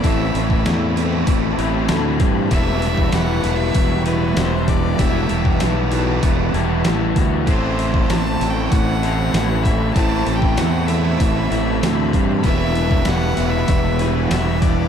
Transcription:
<<
  \new Staff \with { instrumentName = "Analog synth pad" } { \time 4/4 \key e \minor \tempo 4 = 97 << { b''1~ | b''1 | a''1 | b''1~ |
b''1~ | b''1 | } \\ { <c' a' e''>1 | <g' fis''>1~ | <g' fis''>1 | <a' c''>1~ |
<a' c''>1 | <g' e'' fis''>1 | } >> }
  \new Staff \with { instrumentName = "Fiddle" } { \time 4/4 \key e \minor e''4 r2. | e''4 \tuplet 3/2 { fis''4 e''8~ } e''8 b'8 c''8 d''8 | e''4 r2. | c''4 \tuplet 3/2 { a''4 g''8 } fis''4. e''8 |
\tuplet 3/2 { a''4 g''8 } fis''8 e''2 r8 | e''4 \tuplet 3/2 { fis''4 e''8~ } e''8 b'8 e''8 d''8 | }
  \new Staff \with { instrumentName = "Overdriven electric guitar" } { \time 4/4 \key e \minor <a, e a c' e'>2~ <a, e a c' e'>8 <a, e a c' e'>8 <a, e a c' e'>4 | <e g b e'>2~ <e g b e'>8 <e g b e'>8 <e g b e'>4 | <e g b e'>2~ <e g b e'>8 <e g b e'>8 <e g b e'>4 | <a, e a c' e'>2~ <a, e a c' e'>8 <a, e a c' e'>8 <a, e a c' e'>4 |
<a, e a c' e'>2~ <a, e a c' e'>8 <a, e a c' e'>8 <a, e a c' e'>4 | <e g b e'>2~ <e g b e'>8 <e g b e'>8 <e g b e'>4 | }
  \new Staff \with { instrumentName = "Overdriven electric guitar" } { \time 4/4 \key e \minor <a, e a c' e'>4. <a, e a c' e'>2~ <a, e a c' e'>8 | <e g b e'>4. <e g b e'>2~ <e g b e'>8 | <e g b e'>4. <e g b e'>2~ <e g b e'>8 | <a, e a c' e'>4. <a, e a c' e'>2~ <a, e a c' e'>8 |
<a, e a c' e'>4. <a, e a c' e'>2~ <a, e a c' e'>8 | <e g b e'>4. <e g b e'>2~ <e g b e'>8 | }
  \new Staff \with { instrumentName = "Fingered electric bass" } { \clef bass \time 4/4 \key e \minor a,,8 a,,8 e,4 a,,8 a,,8 d,8 g,8 | e,,4 e,,8 e,,8 e,,4 e,,4 | e,,8 e,,8 b,,4 e,,8 e,,8 a,,8 d,8 | a,,4 a,,8 a,,8 a,,4 a,,4 |
a,,8 a,,8 e,4 a,,8 a,,8 d,8 g,8 | e,,4 e,,8 e,,8 e,,4 e,,4 | }
  \new DrumStaff \with { instrumentName = "Drums" } \drummode { \time 4/4 <hho bd>8 hho16 bd16 <hho sn>8 hho16 sn16 <hho bd>8 hho8 <hho sn>8 <hho bd>8 | <hho bd>8 hho16 bd16 <hho sn>8 hho8 <hho bd>8 hho8 <hho sn>8 <hho bd>8 | <hho bd>8 hho16 bd16 <hho sn>8 hho16 sn16 <hho bd>8 hho8 <hho sn>8 <hho bd>8 | <hho bd>8 hho16 bd16 <hho sn>8 hho8 <hho bd>8 hho8 <hho sn>8 <hho bd sn>8 |
<hho bd>8 hho16 bd16 <hho sn>8 hho16 sn16 <hho bd>8 hho8 <hho sn>8 <hho bd>8 | <hho bd>8 hho16 bd16 <hho sn>8 hho8 <hho bd>8 hho8 <hho sn>8 <hho bd>8 | }
>>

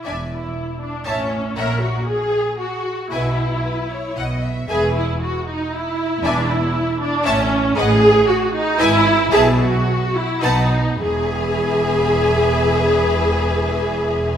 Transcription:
<<
  \new Staff \with { instrumentName = "Violin section" } { \time 3/4 \key e \major \tempo 4 = 115 gis''8 r4. a''8 r8 | fis''8 r2 r8 | gis''8 r4. fis''8 r8 | gis''8 r2 r8 |
gis''8 r4. a''8 r8 | fis''8 r4. gis''8 r8 | a''8 r4. a''8 r8 | gis''2.~ |
gis''2. | }
  \new Staff \with { instrumentName = "Violin section" } { \time 3/4 \key e \major <d'' e''>8 r4. <cis'' e''>8 r8 | <cis'' e''>8 r2 r8 | <b' e''>8 r8 b'8 cis''8 dis''8 e''8 | <b' e''>8 r2 r8 |
<d'' e''>8 r4. <cis'' e''>8 r8 | <b' dis''>8 r4. <b' e''>8 r8 | <b' e''>8 r4. <b' fis''>8 r8 | <b' e''>2.~ |
<b' e''>2. | }
  \new Staff \with { instrumentName = "Viola section" } { \time 3/4 \key e \major d'8 e'4 d'8 cis'4 | ais'8 fis'8 gis'4 fis'4 | e'2 r4 | gis'8 e'8 fis'8 dis'8 e'4 |
d'8 e'4 d'8 cis'4 | gis'4 fis'8 dis'8 e'4 | gis'8 fis'4 e'8 dis'4 | gis'2.~ |
gis'2. | }
  \new Staff \with { instrumentName = "Cello section" } { \clef bass \time 3/4 \key e \major e,4 r4 a,4 | ais,4 r2 | b,4 r4 b,4 | e,4 r2 |
e,4 r4 a,4 | a,4 r4 gis,4 | b,4 r4 b,4 | e,2.~ |
e,2. | }
  \new Staff \with { instrumentName = "Double bass section" } { \clef bass \time 3/4 \key e \major e,,4 r4 a,,4 | ais,,4 r2 | b,,4 r4 b,,4 | e,,4 r2 |
e,,4 r4 a,,4 | a,,4 r4 gis,,4 | b,,4 r4 b,,4 | e,,2.~ |
e,,2. | }
>>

